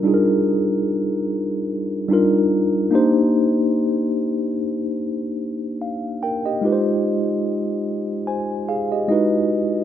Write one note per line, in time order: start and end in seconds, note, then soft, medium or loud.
0.00 0.03 G3 medium
0.00 1.60 G3 medium
0.00 0.04 D4 medium
0.00 0.05 D#4 medium
0.00 0.06 F4 medium
0.00 0.14 A#4 loud
0.04 1.61 D4 medium
0.04 1.62 D#4 medium
0.04 1.62 F4 medium
0.04 0.13 G#4 medium
0.14 1.66 A#4 medium
2.09 2.92 G3 medium
2.09 2.91 D4 medium
2.09 2.92 D#4 medium
2.09 2.93 F4 medium
2.13 2.94 A#4 loud
2.91 4.48 A#3 medium
2.91 4.49 D4 medium
2.91 4.49 D#4 medium
2.91 4.50 G4 medium
2.95 4.50 C5 loud
5.82 6.20 F5 medium
6.23 6.44 A#4 medium
6.23 6.44 G5 medium
6.46 6.64 G4 medium
6.46 6.84 D#5 medium
6.61 8.18 G#3 medium
6.61 8.19 D#4 medium
6.61 8.20 F4 medium
6.61 8.20 G4 medium
6.66 6.71 B4 medium
6.72 8.24 C5 medium
8.27 8.66 C5 medium
8.27 8.66 G#5 medium
8.69 8.90 G#4 medium
8.69 8.90 F5 medium
8.92 9.30 G4 medium
8.92 9.07 D#5 medium
9.08 9.84 G#3 medium
9.08 9.11 D#4 medium
9.08 9.84 D#4 medium
9.08 9.84 E4 medium
9.08 9.84 F#4 medium
9.08 9.84 D#5 medium
9.12 9.84 B4 medium